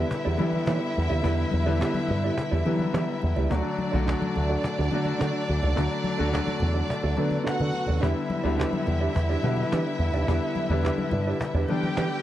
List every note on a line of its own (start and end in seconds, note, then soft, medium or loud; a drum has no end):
0.00 0.37 D3 medium
0.00 0.38 G3 medium
0.00 0.38 B3 medium
0.00 0.39 E4 medium
0.00 3.47 E4 medium
0.00 0.11 D5 medium
0.00 3.47 E5 medium
0.10 cajon bass loud
0.10 muted conga soft
0.25 0.36 E2 medium
0.25 0.37 B3 medium
0.25 0.38 E4 medium
0.25 0.38 G4 medium
0.25 0.38 D5 medium
0.37 1.01 D3 medium
0.37 0.59 E3 medium
0.37 1.01 G3 medium
0.37 0.54 B3 medium
0.37 1.01 B3 medium
0.37 1.02 E4 medium
0.37 0.53 E4 medium
0.37 0.52 G4 medium
0.37 0.52 D5 medium
0.37 muted conga soft
0.37 high conga medium
0.53 muted clean electric guitar stroke soft
0.53 high conga medium
0.66 0.77 E3 medium
0.66 0.88 B3 medium
0.66 0.82 E4 medium
0.66 0.81 G4 medium
0.66 0.81 D5 medium
0.66 cajon bass loud
0.66 cajon slap loud
0.66 muted conga soft
0.82 muted clean electric guitar stroke soft
0.95 1.07 E2 medium
0.95 muted clean electric guitar stroke soft
0.95 muted conga soft
1.09 1.20 D#2 medium
1.09 1.22 B3 soft
1.09 1.22 E4 medium
1.09 1.23 G4 medium
1.09 1.24 D5 medium
1.09 low conga medium
1.23 1.44 E2 medium
1.23 1.55 D3 medium
1.23 1.55 G3 medium
1.23 1.44 B3 medium
1.23 1.55 B3 medium
1.23 1.38 E4 medium
1.23 1.55 E4 medium
1.23 1.38 G4 medium
1.23 1.37 D5 medium
1.23 cajon bass loud
1.23 muted conga soft
1.38 muted clean electric guitar stroke soft
1.51 1.82 E2 medium
1.51 muted clean electric guitar stroke soft
1.51 muted conga soft
1.51 high conga medium
1.66 2.39 D3 loud
1.66 2.40 G3 medium
1.66 2.40 B3 medium
1.66 1.80 B3 soft
1.66 1.80 E4 medium
1.66 2.40 E4 medium
1.66 1.80 G4 medium
1.66 1.81 D5 medium
1.79 2.01 B3 medium
1.79 1.96 E4 loud
1.79 1.96 G4 medium
1.79 1.95 D5 medium
1.79 cajon bass loud
1.79 cajon slap loud
1.79 muted conga soft
1.94 muted clean electric guitar stroke soft
1.94 high conga medium
2.08 2.29 G2 loud
2.08 muted clean electric guitar stroke soft
2.08 low conga medium
2.24 2.36 B3 medium
2.24 2.36 E4 medium
2.24 2.37 G4 medium
2.24 2.37 D5 medium
2.37 muted clean electric guitar stroke soft
2.37 cajon bass loud
2.51 2.62 E2 loud
2.51 2.64 B3 medium
2.51 2.64 E4 medium
2.51 2.65 G4 medium
2.51 2.65 D5 medium
2.65 3.28 D3 medium
2.65 2.85 E3 medium
2.65 2.72 F#3 medium
2.65 2.81 B3 medium
2.65 3.28 B3 medium
2.65 2.79 E4 medium
2.65 3.29 E4 medium
2.65 2.79 G4 medium
2.65 2.78 D5 medium
2.65 muted conga soft
2.65 high conga medium
2.72 3.32 G3 medium
2.79 muted clean electric guitar stroke medium
2.79 high conga medium
2.93 3.04 E3 loud
2.93 3.14 B3 medium
2.93 3.08 E4 medium
2.93 3.08 G4 medium
2.93 3.07 D5 medium
2.93 cajon bass loud
2.93 cajon slap loud
3.08 muted clean electric guitar stroke soft
3.22 3.33 E2 medium
3.22 muted clean electric guitar stroke soft
3.22 muted conga soft
3.36 3.47 C#2 medium
3.36 3.49 B3 medium
3.36 3.50 E4 medium
3.36 3.50 G4 medium
3.36 3.50 D5 medium
3.36 low conga medium
3.50 3.60 D2 medium
3.50 3.82 D3 medium
3.50 3.82 F#3 medium
3.50 3.82 A3 medium
3.50 3.70 D4 medium
3.50 7.42 D4 medium
3.50 3.64 F#4 medium
3.50 3.83 F#4 medium
3.50 3.64 A4 medium
3.50 7.42 D5 medium
3.50 3.64 D5 medium
3.50 cajon bass loud
3.50 muted conga soft
3.65 muted clean electric guitar stroke soft
3.78 muted clean electric guitar stroke soft
3.78 muted conga soft
3.78 high conga medium
3.92 4.13 B1 loud
3.92 4.66 D3 medium
3.92 4.66 F#3 medium
3.92 4.67 A3 medium
3.92 4.05 D4 medium
3.92 4.06 F#4 medium
3.92 4.67 F#4 loud
3.92 4.07 A4 medium
3.92 4.06 D5 medium
4.06 4.27 D4 medium
4.06 4.21 F#4 medium
4.06 4.20 A4 loud
4.06 4.20 D5 loud
4.06 cajon bass loud
4.06 cajon slap loud
4.06 muted conga soft
4.21 muted clean electric guitar stroke medium
4.21 high conga medium
4.36 4.55 D2 loud
4.36 muted clean electric guitar stroke soft
4.36 low conga medium
4.49 4.63 D4 medium
4.49 4.63 F#4 medium
4.49 4.63 A4 medium
4.49 4.64 D5 medium
4.63 muted clean electric guitar stroke soft
4.63 cajon bass loud
4.63 muted conga soft
4.79 4.88 D2 medium
4.79 4.90 D4 medium
4.79 4.90 F#4 medium
4.79 4.91 A4 medium
4.79 4.92 D5 medium
4.91 5.55 D3 medium
4.91 5.12 D3 medium
4.91 5.55 F#3 medium
4.91 5.55 A3 medium
4.91 5.07 D4 medium
4.91 5.07 F#4 medium
4.91 5.56 F#4 medium
4.91 5.06 A4 medium
4.91 5.06 D5 medium
4.91 muted conga soft
4.91 high conga medium
5.05 muted clean electric guitar stroke soft
5.05 high conga medium
5.19 5.31 D3 medium
5.19 5.40 D4 medium
5.19 5.34 F#4 medium
5.19 5.33 A4 medium
5.19 5.32 D5 loud
5.19 cajon bass loud
5.19 cajon slap loud
5.19 muted conga soft
5.34 muted clean electric guitar stroke soft
5.48 5.59 D2 medium
5.48 muted clean electric guitar stroke soft
5.48 muted conga soft
5.63 5.73 C#2 medium
5.63 5.74 D4 medium
5.63 5.75 F#4 medium
5.63 5.75 A4 medium
5.63 5.75 D5 medium
5.63 low conga medium
5.75 5.87 D2 medium
5.75 6.08 D3 medium
5.75 6.08 F#3 medium
5.75 6.08 A3 medium
5.75 5.96 D4 medium
5.75 5.90 F#4 medium
5.75 6.09 F#4 medium
5.75 5.90 A4 medium
5.75 5.90 D5 medium
5.75 cajon bass loud
5.91 muted clean electric guitar stroke soft
6.04 muted clean electric guitar stroke soft
6.04 muted conga soft
6.04 high conga medium
6.18 6.39 D2 medium
6.18 6.92 D3 medium
6.18 6.92 F#3 medium
6.18 6.92 A3 medium
6.18 6.31 D4 medium
6.18 6.32 F#4 medium
6.18 6.92 F#4 loud
6.18 6.32 A4 medium
6.18 6.33 D5 medium
6.32 6.53 D4 medium
6.32 6.46 F#4 medium
6.32 6.46 A4 loud
6.32 6.46 D5 loud
6.32 cajon bass loud
6.32 cajon slap loud
6.32 muted conga soft
6.47 muted clean electric guitar stroke soft
6.47 high conga medium
6.60 6.81 E2 loud
6.60 muted clean electric guitar stroke soft
6.60 muted conga soft
6.60 low conga medium
6.74 6.88 D4 medium
6.74 6.89 F#4 medium
6.74 6.89 A4 medium
6.74 6.89 D5 medium
6.88 muted clean electric guitar stroke soft
6.88 cajon bass loud
6.88 muted conga soft
7.03 7.13 D2 medium
7.03 7.16 D4 medium
7.03 7.16 F#4 medium
7.03 7.17 A4 medium
7.03 7.18 D5 medium
7.17 7.80 D3 medium
7.17 7.37 D3 medium
7.17 7.80 F#3 medium
7.17 7.80 A3 medium
7.17 7.80 B3 medium
7.17 7.33 D4 medium
7.17 7.31 F#4 medium
7.17 7.30 A4 medium
7.17 7.30 D5 medium
7.17 muted conga soft
7.17 high conga medium
7.31 muted clean electric guitar stroke soft
7.31 high conga medium
7.44 7.65 D4 medium
7.44 7.58 F#4 medium
7.44 8.02 F#4 medium
7.44 7.58 A4 medium
7.44 7.58 D5 medium
7.44 8.02 F#5 medium
7.44 cajon bass loud
7.44 cajon slap loud
7.59 7.70 D3 medium
7.59 muted clean electric guitar stroke soft
7.59 low conga medium
7.73 muted clean electric guitar stroke soft
7.73 muted conga soft
7.87 7.98 D#2 medium
7.87 7.99 D4 soft
7.87 8.00 F#4 soft
7.87 8.01 A4 medium
7.87 8.00 D5 medium
7.87 low conga medium
8.00 8.12 E2 loud
8.00 8.33 D3 medium
8.00 8.34 G3 medium
8.00 8.34 B3 medium
8.00 8.21 D4 medium
8.00 11.65 E4 medium
8.00 8.34 E4 medium
8.00 8.15 G4 medium
8.00 8.15 B4 medium
8.00 8.14 D5 medium
8.00 11.65 E5 medium
8.00 cajon bass loud
8.00 muted conga soft
8.15 muted clean electric guitar stroke soft
8.30 muted clean electric guitar stroke soft
8.30 muted conga soft
8.30 high conga medium
8.44 8.64 D2 medium
8.44 9.17 D3 medium
8.44 9.17 G3 medium
8.44 9.17 B3 medium
8.44 8.56 D4 soft
8.44 9.18 E4 medium
8.44 8.57 G4 medium
8.44 8.58 B4 medium
8.44 8.58 D5 medium
8.57 8.78 D4 medium
8.57 8.72 G4 loud
8.57 8.72 B4 loud
8.57 8.72 D5 loud
8.57 cajon bass loud
8.57 cajon slap loud
8.57 muted conga soft
8.73 muted clean electric guitar stroke soft
8.73 high conga medium
8.86 9.07 E2 medium
8.86 muted clean electric guitar stroke soft
8.86 low conga medium
9.00 9.14 D4 soft
9.00 9.14 G4 medium
9.00 9.14 B4 medium
9.00 9.15 D5 medium
9.15 9.35 E2 medium
9.15 cajon bass loud
9.15 muted conga soft
9.29 9.42 D4 medium
9.29 9.43 G4 medium
9.29 9.44 B4 medium
9.29 9.44 D5 medium
9.43 9.63 B2 medium
9.43 10.06 D3 medium
9.43 10.06 G3 medium
9.43 10.06 B3 medium
9.43 9.59 D4 medium
9.43 10.06 E4 medium
9.43 9.59 G4 medium
9.43 9.58 B4 medium
9.43 9.58 D5 medium
9.43 high conga medium
9.57 muted clean electric guitar stroke medium
9.57 high conga medium
9.72 9.82 E3 medium
9.72 9.92 D4 medium
9.72 9.86 G4 medium
9.72 9.86 B4 medium
9.72 9.85 D5 loud
9.72 cajon bass loud
9.72 cajon slap loud
9.86 muted clean electric guitar stroke soft
9.99 10.09 E2 medium
9.99 muted clean electric guitar stroke soft
9.99 muted conga soft
10.13 10.23 D#2 medium
10.13 10.27 D4 medium
10.13 10.27 G4 medium
10.13 10.27 B4 medium
10.13 10.28 D5 medium
10.13 low conga medium
10.27 10.38 E2 medium
10.27 10.59 D3 medium
10.27 10.59 G3 medium
10.27 10.60 B3 medium
10.27 10.48 D4 medium
10.27 10.60 E4 medium
10.27 10.42 G4 medium
10.27 10.41 B4 medium
10.27 10.40 D5 medium
10.27 cajon bass loud
10.27 muted conga soft
10.42 muted clean electric guitar stroke soft
10.56 muted clean electric guitar stroke soft
10.56 muted conga soft
10.56 high conga medium
10.70 10.89 E2 medium
10.70 11.43 D3 medium
10.70 11.43 G3 medium
10.70 11.43 B3 medium
10.70 10.82 D4 soft
10.70 11.43 E4 loud
10.70 10.82 G4 medium
10.70 10.83 B4 medium
10.70 10.84 D5 medium
10.83 11.04 D4 medium
10.83 10.98 G4 medium
10.83 10.97 B4 loud
10.83 10.97 D5 loud
10.83 cajon bass loud
10.83 cajon slap loud
10.83 muted conga soft
10.98 muted clean electric guitar stroke medium
10.98 high conga medium
11.11 11.32 G2 medium
11.11 muted clean electric guitar stroke soft
11.11 low conga medium
11.27 11.40 D4 soft
11.27 11.40 G4 medium
11.27 11.40 B4 medium
11.27 11.40 D5 medium
11.40 muted clean electric guitar stroke soft
11.40 cajon bass loud
11.40 muted conga soft
11.54 11.64 E2 loud
11.54 11.68 D4 medium
11.54 11.69 G4 medium
11.54 11.69 B4 medium
11.54 11.70 D5 medium
11.68 12.22 D3 medium
11.68 11.88 E3 medium
11.68 12.22 G3 medium
11.68 12.22 B3 medium
11.68 11.85 D4 medium
11.68 12.22 D4 medium
11.68 12.22 G4 medium
11.68 11.84 G4 medium
11.68 11.84 B4 medium
11.68 11.83 D5 medium
11.68 12.22 G5 medium
11.68 high conga medium
11.83 muted clean electric guitar stroke soft
11.83 high conga medium
11.97 12.07 E3 medium
11.97 12.17 D4 medium
11.97 12.11 G4 medium
11.97 12.11 B4 medium
11.97 12.10 D5 medium
11.97 cajon bass loud
11.97 cajon slap medium
12.11 muted clean electric guitar stroke soft